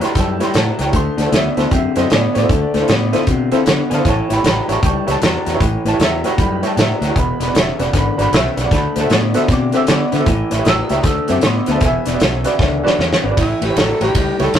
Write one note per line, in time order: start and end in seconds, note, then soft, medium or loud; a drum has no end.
0.00 0.13 A2 medium
0.00 0.14 F#3 medium
0.00 0.08 E4 medium
0.00 0.08 G4 medium
0.00 0.09 B4 medium
0.00 0.09 C#5 medium
0.00 snare soft
0.00 closed hi-hat medium
0.05 0.17 C6 medium
0.15 0.39 F#2 medium
0.15 0.37 A2 medium
0.15 0.38 G3 medium
0.15 kick loud
0.15 snare soft
0.15 closed hi-hat medium
0.20 0.42 A5 medium
0.39 0.53 A2 medium
0.39 0.54 G3 medium
0.39 0.47 E4 medium
0.39 0.47 G4 medium
0.39 0.48 B4 medium
0.39 0.48 C#5 medium
0.39 snare soft
0.39 closed hi-hat medium
0.45 0.57 C6 medium
0.54 0.77 A2 medium
0.54 0.70 A2 medium
0.54 0.77 F#3 medium
0.54 0.80 A5 medium
0.54 snare loud
0.54 closed hi-hat medium
0.79 0.93 C#2 medium
0.79 0.92 A2 medium
0.79 0.92 F#3 medium
0.79 0.83 B4 soft
0.79 0.83 C#5 soft
0.79 0.95 G5 medium
0.79 snare soft
0.79 closed hi-hat medium
0.86 0.94 E4 medium
0.86 0.94 G4 medium
0.86 0.94 B4 medium
0.86 0.94 C#5 medium
0.93 1.08 D2 medium
0.93 1.16 D3 medium
0.93 1.16 A3 medium
0.93 1.19 C6 medium
0.93 kick loud
0.93 closed hi-hat medium
1.17 1.27 D2 medium
1.17 1.30 D3 medium
1.17 1.31 A3 medium
1.17 1.22 A4 soft
1.17 1.22 C5 soft
1.17 snare soft
1.17 closed hi-hat medium
1.22 1.33 E4 medium
1.22 1.33 F#4 medium
1.22 1.34 A5 medium
1.26 1.33 A4 medium
1.26 1.33 C5 medium
1.32 1.47 D2 medium
1.32 1.54 D3 medium
1.32 1.55 B3 medium
1.32 1.58 E5 medium
1.32 snare loud
1.32 closed hi-hat medium
1.57 1.66 D2 medium
1.57 1.70 D3 medium
1.57 1.70 B3 medium
1.57 1.64 E4 medium
1.57 1.64 F#4 medium
1.57 1.65 A4 medium
1.57 1.65 C5 medium
1.57 1.72 A5 medium
1.57 snare soft
1.57 closed hi-hat medium
1.71 1.86 F#2 medium
1.71 1.94 D3 medium
1.71 1.94 C4 medium
1.71 1.97 E5 medium
1.71 kick medium
1.71 closed hi-hat medium
1.96 2.05 F#2 medium
1.96 2.09 D3 medium
1.96 2.09 C4 medium
1.96 2.03 E4 medium
1.96 2.03 F#4 medium
1.96 2.04 A4 medium
1.96 2.04 C5 medium
1.96 2.11 D#5 medium
1.96 snare soft
1.96 closed hi-hat medium
2.10 2.26 A2 medium
2.10 2.33 D3 medium
2.10 2.33 B3 medium
2.10 2.36 D5 medium
2.10 snare medium
2.10 closed hi-hat medium
2.34 2.44 A2 medium
2.34 2.48 D3 medium
2.34 2.48 B3 medium
2.34 2.38 A4 soft
2.34 2.39 C5 soft
2.34 2.35 C#5 medium
2.34 3.12 D5 loud
2.34 snare soft
2.34 closed hi-hat medium
2.42 2.49 E4 medium
2.42 2.49 F#4 medium
2.42 2.50 A4 medium
2.42 2.50 C5 medium
2.49 2.64 D2 medium
2.49 2.71 D3 medium
2.49 2.72 A3 medium
2.49 kick loud
2.49 closed hi-hat medium
2.74 2.83 D2 medium
2.74 2.87 D3 medium
2.74 2.87 A3 medium
2.74 2.77 A4 soft
2.74 2.78 C5 soft
2.74 snare soft
2.74 closed hi-hat medium
2.80 2.88 E4 medium
2.80 2.88 F4 medium
2.80 2.88 A4 medium
2.80 2.89 C5 medium
2.88 3.12 A2 medium
2.88 3.10 D3 medium
2.88 3.11 B3 medium
2.88 snare loud
2.88 closed hi-hat medium
3.12 3.26 D3 medium
3.12 3.26 B3 medium
3.12 3.20 E4 medium
3.12 3.20 F4 medium
3.12 3.20 A4 medium
3.12 3.20 C5 medium
3.12 snare soft
3.12 closed hi-hat medium
3.27 3.51 B2 medium
3.27 3.49 D3 medium
3.27 3.49 C4 medium
3.27 kick medium
3.27 closed hi-hat medium
3.51 3.65 D3 medium
3.51 3.65 C4 medium
3.51 3.59 E4 medium
3.51 3.59 F4 medium
3.51 3.59 A4 medium
3.51 3.59 C5 loud
3.51 snare soft
3.51 closed hi-hat medium
3.66 3.88 D3 medium
3.66 3.81 D3 medium
3.66 3.88 B3 medium
3.66 snare loud
3.66 closed hi-hat medium
3.90 4.03 D3 medium
3.90 4.00 D3 medium
3.90 4.03 B3 medium
3.90 3.94 A4 soft
3.90 3.95 C5 soft
3.90 3.92 G#5 medium
3.90 snare soft
3.90 closed hi-hat medium
3.94 4.05 E4 medium
3.94 4.05 F4 medium
3.94 4.05 A4 medium
3.94 4.05 C5 medium
3.94 4.06 F5 medium
3.94 4.06 A5 medium
4.05 4.20 A1 medium
4.05 4.27 A2 medium
4.05 4.27 E3 medium
4.05 4.28 C#5 medium
4.05 4.31 A5 medium
4.05 kick loud
4.05 snare soft
4.05 closed hi-hat medium
4.29 4.39 A1 medium
4.29 4.42 A2 medium
4.29 4.43 E3 medium
4.29 4.33 B4 soft
4.29 4.33 C#5 medium
4.29 4.45 G5 medium
4.29 snare soft
4.29 closed hi-hat medium
4.33 4.43 E4 medium
4.33 4.43 G4 medium
4.33 4.44 B4 medium
4.33 4.44 C#5 medium
4.33 4.45 B5 medium
4.44 4.59 A1 medium
4.44 4.66 A2 medium
4.44 4.66 F#3 medium
4.44 snare loud
4.44 closed hi-hat medium
4.49 4.69 G5 medium
4.49 4.70 B5 medium
4.67 4.77 A1 medium
4.67 4.81 A2 medium
4.67 4.82 F#3 medium
4.67 4.75 E4 medium
4.67 4.75 G4 medium
4.67 4.76 B4 medium
4.67 4.76 C#5 medium
4.67 snare soft
4.67 closed hi-hat medium
4.72 4.84 A5 medium
4.72 4.84 C#6 medium
4.83 4.98 C#2 medium
4.83 5.05 A2 medium
4.83 5.05 G3 loud
4.83 5.07 A5 medium
4.83 5.08 C#6 medium
4.83 kick loud
4.83 closed hi-hat medium
5.06 5.16 C#2 medium
5.06 5.20 A2 medium
5.06 5.20 G3 medium
5.06 5.14 E4 medium
5.06 5.14 G4 medium
5.06 5.14 B4 medium
5.06 5.15 C#5 medium
5.06 snare soft
5.06 closed hi-hat medium
5.11 5.47 A5 loud
5.21 5.37 E2 medium
5.21 5.44 A2 medium
5.21 5.44 F#3 medium
5.21 snare loud
5.21 closed hi-hat medium
5.46 5.55 E2 medium
5.46 5.59 A2 medium
5.46 5.59 F#3 medium
5.46 5.50 B4 soft
5.46 5.50 C#5 soft
5.46 snare soft
5.46 closed hi-hat medium
5.53 5.60 E4 medium
5.53 5.61 G4 medium
5.53 5.61 B4 medium
5.53 5.61 C#5 medium
5.60 5.75 A1 medium
5.60 5.83 A2 medium
5.60 5.83 E3 medium
5.60 kick loud
5.60 closed hi-hat medium
5.85 5.94 A1 medium
5.85 5.98 A2 medium
5.85 5.98 E3 medium
5.85 5.89 B4 soft
5.85 5.89 C#5 soft
5.85 6.00 A5 loud
5.85 snare soft
5.85 closed hi-hat medium
5.93 6.00 E4 medium
5.93 6.00 G4 medium
5.93 6.00 B4 medium
5.93 6.00 C#5 medium
5.99 6.23 E2 medium
5.99 6.22 A2 medium
5.99 6.22 F#3 medium
5.99 6.25 E5 medium
5.99 snare loud
5.99 closed hi-hat medium
6.24 6.37 A2 medium
6.24 6.37 F#3 medium
6.24 6.31 E4 medium
6.24 6.31 G4 medium
6.24 6.32 B4 medium
6.24 6.32 C#5 medium
6.24 6.39 F#5 medium
6.24 snare soft
6.24 closed hi-hat medium
6.38 6.62 F#2 medium
6.38 6.60 A2 medium
6.38 6.61 G3 medium
6.38 6.62 B5 medium
6.38 kick loud
6.38 closed hi-hat medium
6.62 6.75 A2 medium
6.62 6.76 G3 medium
6.62 6.70 E4 medium
6.62 6.70 G4 medium
6.62 6.70 B4 medium
6.62 6.70 C#5 medium
6.62 snare soft
6.62 closed hi-hat medium
6.67 6.79 A5 medium
6.77 6.99 A2 medium
6.77 6.92 A2 medium
6.77 6.99 F#3 medium
6.77 7.02 E5 medium
6.77 snare loud
6.77 closed hi-hat medium
7.01 7.10 D2 medium
7.01 7.14 A2 medium
7.01 7.15 F#3 medium
7.01 7.05 B4 soft
7.01 7.05 C#5 soft
7.01 snare soft
7.01 closed hi-hat medium
7.05 7.16 E4 medium
7.05 7.16 G4 medium
7.05 7.16 B4 medium
7.05 7.17 F#5 medium
7.09 7.16 C#5 medium
7.16 7.31 E1 medium
7.16 7.38 E2 medium
7.16 7.38 B2 medium
7.16 7.41 B5 medium
7.16 kick loud
7.16 closed hi-hat medium
7.40 7.49 E1 medium
7.40 7.53 E2 medium
7.40 7.53 B2 medium
7.40 7.44 B4 soft
7.40 7.44 D5 soft
7.40 7.55 B5 medium
7.40 snare soft
7.40 closed hi-hat medium
7.47 7.55 F#4 medium
7.47 7.55 G#4 medium
7.47 7.55 B4 medium
7.47 7.55 D5 medium
7.54 7.70 E1 medium
7.54 7.77 E2 medium
7.54 7.77 C#3 medium
7.54 snare loud
7.54 closed hi-hat medium
7.59 7.81 E5 medium
7.79 7.88 E1 medium
7.79 7.92 E2 medium
7.79 7.92 C#3 medium
7.79 7.86 F#4 medium
7.79 7.86 G#4 medium
7.79 7.87 B4 medium
7.79 7.87 D5 medium
7.79 snare soft
7.79 closed hi-hat medium
7.83 7.95 F#5 medium
7.93 8.08 G#1 medium
7.93 8.16 E2 medium
7.93 8.16 D3 medium
7.93 kick medium
7.93 snare soft
7.93 closed hi-hat medium
7.98 8.20 B5 medium
8.17 8.27 G#1 medium
8.17 8.31 E2 medium
8.17 8.31 D3 medium
8.17 8.25 F#4 medium
8.17 8.25 G#4 medium
8.17 8.26 B4 medium
8.17 8.26 D5 medium
8.17 8.19 A#5 medium
8.17 snare soft
8.17 closed hi-hat medium
8.22 8.34 B5 loud
8.32 8.47 B1 medium
8.32 8.55 E2 medium
8.32 8.55 C#3 medium
8.32 8.58 E5 medium
8.32 snare loud
8.32 closed hi-hat medium
8.56 8.66 B1 medium
8.56 8.70 E2 medium
8.56 8.70 C#3 medium
8.56 8.60 B4 soft
8.56 8.61 D5 soft
8.56 snare soft
8.56 closed hi-hat medium
8.61 8.71 F#4 medium
8.61 8.71 G#4 medium
8.61 8.72 B4 medium
8.61 8.72 D5 medium
8.61 8.73 F#5 medium
8.71 8.86 D2 medium
8.71 8.93 D3 medium
8.71 8.94 A3 medium
8.71 8.97 B5 medium
8.71 kick loud
8.71 snare soft
8.71 closed hi-hat medium
8.95 9.05 D2 medium
8.95 9.08 D3 medium
8.95 9.09 A3 medium
8.95 8.99 C5 soft
8.95 9.00 E5 soft
8.95 snare soft
8.95 closed hi-hat medium
9.00 9.10 F#4 medium
9.00 9.10 A4 medium
9.00 9.10 C5 medium
9.00 9.10 E5 medium
9.00 9.11 F#5 medium
9.00 9.12 A5 medium
9.10 9.34 A2 medium
9.10 9.32 D3 medium
9.10 9.32 B3 medium
9.10 snare loud
9.10 closed hi-hat medium
9.34 9.48 D3 medium
9.34 9.48 B3 medium
9.34 9.42 F#4 medium
9.34 9.42 A4 medium
9.34 9.42 C5 medium
9.34 9.42 E5 medium
9.34 snare soft
9.34 closed hi-hat medium
9.48 9.72 B2 medium
9.48 9.71 D3 medium
9.48 9.71 C4 medium
9.48 kick loud
9.48 snare soft
9.48 closed hi-hat medium
9.52 9.75 D6 loud
9.72 9.86 D3 medium
9.72 9.87 C4 medium
9.72 9.81 F#4 medium
9.72 9.81 A4 medium
9.72 9.81 C5 medium
9.72 9.81 E5 medium
9.72 snare soft
9.72 closed hi-hat medium
9.77 9.89 E6 medium
9.87 10.10 D3 medium
9.87 10.03 D3 medium
9.87 10.10 B3 medium
9.87 10.25 F#5 medium
9.87 snare loud
9.87 closed hi-hat medium
9.91 10.27 D6 loud
10.12 10.25 D3 medium
10.12 10.21 D3 medium
10.12 10.25 B3 medium
10.12 10.16 C5 soft
10.12 10.16 E5 soft
10.12 snare soft
10.12 closed hi-hat medium
10.19 10.27 F#4 medium
10.19 10.27 A4 medium
10.19 10.27 C5 medium
10.19 10.27 E5 medium
10.26 10.42 A1 medium
10.26 10.49 A2 medium
10.26 10.49 E3 medium
10.26 kick loud
10.26 closed hi-hat medium
10.51 10.60 A1 medium
10.51 10.64 A2 medium
10.51 10.64 E3 medium
10.51 10.55 C#5 medium
10.51 10.55 E5 medium
10.51 snare soft
10.51 closed hi-hat medium
10.58 10.66 G4 medium
10.58 10.66 B4 medium
10.58 10.66 C#5 medium
10.58 10.66 E5 medium
10.65 10.81 A1 loud
10.65 10.88 A2 medium
10.65 10.88 F#3 medium
10.65 10.67 D#6 medium
10.65 snare loud
10.65 closed hi-hat medium
10.69 11.29 E6 loud
10.89 10.99 C#2 medium
10.89 11.03 A2 medium
10.89 11.03 F#3 medium
10.89 10.97 G4 medium
10.89 10.97 B4 medium
10.89 10.98 C#5 medium
10.89 10.98 E5 medium
10.89 snare soft
10.89 closed hi-hat medium
11.03 11.19 D2 medium
11.03 11.26 D3 medium
11.03 11.27 A3 loud
11.03 kick loud
11.03 snare soft
11.03 closed hi-hat medium
11.28 11.38 F#2 medium
11.28 11.42 D3 medium
11.28 11.42 C4 medium
11.28 11.36 F#4 medium
11.28 11.36 A4 medium
11.28 11.36 C5 medium
11.28 11.36 E5 medium
11.28 snare soft
11.28 closed hi-hat medium
11.32 11.45 D6 medium
11.41 11.59 A2 medium
11.41 11.65 D3 medium
11.41 11.66 B3 medium
11.41 snare loud
11.41 closed hi-hat medium
11.46 11.69 C6 medium
11.66 11.77 D2 medium
11.66 11.81 D3 medium
11.66 11.81 B3 medium
11.66 11.71 C5 soft
11.66 11.71 E5 soft
11.66 snare soft
11.66 closed hi-hat medium
11.71 11.82 F#4 medium
11.71 11.82 A4 medium
11.71 11.83 A5 loud
11.75 11.82 C5 medium
11.75 11.82 E5 medium
11.81 11.96 E1 loud
11.81 12.04 E2 medium
11.81 12.04 B2 medium
11.81 kick loud
11.81 snare soft
11.81 closed hi-hat medium
11.86 12.96 E5 loud
11.86 12.97 G#5 loud
12.05 12.15 E1 medium
12.05 12.20 E2 medium
12.05 12.20 B2 medium
12.05 12.09 B4 soft
12.05 12.10 D5 soft
12.05 snare soft
12.05 closed hi-hat medium
12.13 12.20 F#4 medium
12.13 12.21 G#4 medium
12.13 12.21 B4 medium
12.13 12.21 D5 medium
12.20 12.44 B1 medium
12.20 12.43 E2 medium
12.20 12.43 C#3 medium
12.20 snare loud
12.20 closed hi-hat medium
12.44 12.58 E2 medium
12.44 12.58 C#3 medium
12.44 12.52 F#4 medium
12.44 12.52 G#4 medium
12.44 12.53 B4 medium
12.44 12.53 D5 loud
12.44 snare soft
12.44 closed hi-hat medium
12.59 12.83 C#2 medium
12.59 12.82 E2 medium
12.59 12.82 D3 medium
12.59 kick loud
12.59 snare medium
12.83 12.97 E2 medium
12.83 12.97 D3 medium
12.83 12.91 F#4 loud
12.83 12.91 G#4 medium
12.83 12.92 B4 medium
12.83 12.92 D5 loud
12.83 snare medium
12.99 13.21 E2 medium
12.99 13.13 E2 medium
12.99 13.21 C#3 medium
12.99 snare medium
13.13 snare medium
13.23 13.32 G#1 medium
13.23 13.36 E2 medium
13.23 13.36 C#3 medium
13.23 13.27 B4 medium
13.23 13.27 D5 medium
13.30 13.37 F#4 medium
13.30 13.37 G#4 medium
13.30 13.38 B4 medium
13.30 13.38 D5 medium
13.37 13.52 A1 medium
13.37 13.59 A2 medium
13.37 13.60 E3 medium
13.37 13.66 E4 medium
13.37 kick medium
13.37 snare soft
13.37 ride medium
13.61 13.70 A1 medium
13.61 13.75 A2 medium
13.61 13.75 E3 medium
13.61 13.82 G4 medium
13.61 13.66 B4 soft
13.61 13.66 C#5 soft
13.61 snare soft
13.61 ride medium
13.69 13.76 E4 medium
13.69 13.76 G4 medium
13.69 13.77 B4 medium
13.69 13.77 C#5 medium
13.76 13.91 A1 medium
13.76 13.98 A2 medium
13.76 13.98 F#3 medium
13.76 snare loud
13.76 ride medium
13.80 14.02 A4 medium
14.00 14.09 A1 medium
14.00 14.14 A2 medium
14.00 14.14 F#3 medium
14.00 14.08 E4 medium
14.00 14.08 G4 medium
14.00 14.40 G4 medium
14.00 14.08 B4 medium
14.00 14.09 C#5 medium
14.00 snare soft
14.00 ride medium
14.15 14.30 C#2 medium
14.15 14.37 A2 medium
14.15 14.37 G3 medium
14.15 kick loud
14.15 snare soft
14.15 ride medium
14.39 14.48 C#2 medium
14.39 14.52 A2 medium
14.39 14.53 G3 medium
14.39 14.46 E4 medium
14.39 14.46 G4 medium
14.39 14.47 B4 medium
14.39 14.47 C#5 medium
14.39 snare soft
14.39 ride medium
14.44 14.55 A4 medium
14.54 14.59 E2 medium
14.54 14.59 A2 medium
14.54 14.59 F#3 medium
14.54 snare loud
14.54 ride medium